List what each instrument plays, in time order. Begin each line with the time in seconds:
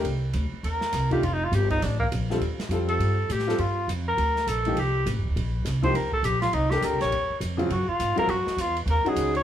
0.04 upright bass C2, ride
0.33 upright bass D2, hi-hat pedal, ride
0.52 muted upright bass stroke
0.63 upright bass D#2, tenor saxophone A#4, ride
0.81 snare
0.92 upright bass C2, snare, hi-hat pedal, ride
1.10 upright piano D#3 A3 D4 F4, tenor saxophone G4, kick, ride
1.23 upright bass F1, tenor saxophone F4, ride
1.33 tenor saxophone D#4
1.44 tenor saxophone F4
1.52 upright bass G1, tenor saxophone G4, hi-hat pedal, ride
1.70 tenor saxophone D#4, kick, ride
1.82 upright bass A1, tenor saxophone D4, snare, ride
2.00 tenor saxophone A#3, kick
2.12 upright bass A#1, hi-hat pedal, ride
2.30 upright piano D3 G3 C4 F4 A4, snare
2.40 upright bass D#2, ride
2.58 muted upright bass stroke, snare, ride
2.69 upright bass F2, upright piano G3 C4 F4 A4, hi-hat pedal, ride
2.88 tenor saxophone A4, ride
2.99 upright bass G2, ride
3.29 upright bass A2, tenor saxophone G4, hi-hat pedal, ride
3.39 snare
3.47 upright piano G3 C4 F4 A4, snare
3.58 upright bass G2, tenor saxophone F4, ride
3.88 upright bass F2, hi-hat pedal, ride
4.09 tenor saxophone A#4
4.17 upright bass D2, ride
4.36 snare
4.47 upright bass A#1, tenor saxophone A4, hi-hat pedal, ride
4.65 upright piano F3 A#3 D#4 G4, ride
4.76 upright bass C2, tenor saxophone G4, ride
5.06 upright bass A1, hi-hat pedal, ride
5.16 upright bass G1
5.24 upright bass D#1, kick
5.36 upright bass A#1, ride
5.65 upright bass C2, snare, hi-hat pedal, ride
5.82 upright piano F3 A#3 D#4 G4, tenor saxophone C5, kick, ride
5.94 upright bass D#2, tenor saxophone A#4, ride
6.12 tenor saxophone A4, kick
6.23 upright bass A#1, tenor saxophone G4, hi-hat pedal, ride
6.42 tenor saxophone F4, snare, ride
6.53 upright bass C2, tenor saxophone D#4, ride
6.71 upright piano D4 G4 A4 A#4, tenor saxophone G4, snare
6.82 upright bass D2, tenor saxophone A#4, hi-hat pedal, ride
6.92 upright bass C2
7.00 upright bass A#1, tenor saxophone C#5, snare, ride
7.11 upright bass D#2, ride
7.30 muted upright bass stroke
7.40 upright bass F2, hi-hat pedal, ride
7.57 upright piano C#3 F#3 C4 F4, ride
7.70 upright bass F#2, tenor saxophone F#4, ride
7.88 tenor saxophone F4, muted upright bass stroke
7.99 upright bass G#2, hi-hat pedal, ride
8.16 upright piano F#3 C4 F4 A#4, tenor saxophone A#4, muted upright bass stroke, ride
8.28 upright bass F#2, tenor saxophone F#4, ride
8.46 muted upright bass stroke, snare
8.57 upright bass E2, hi-hat pedal, ride
8.61 tenor saxophone F4
8.77 ride
8.86 upright bass D#2, ride
8.91 tenor saxophone A#4
9.04 upright piano D#3 G#3 C#4 F#4, muted upright bass stroke, ride
9.09 tenor saxophone G#4
9.15 upright bass C#2, hi-hat pedal, ride
9.35 tenor saxophone C#5, ride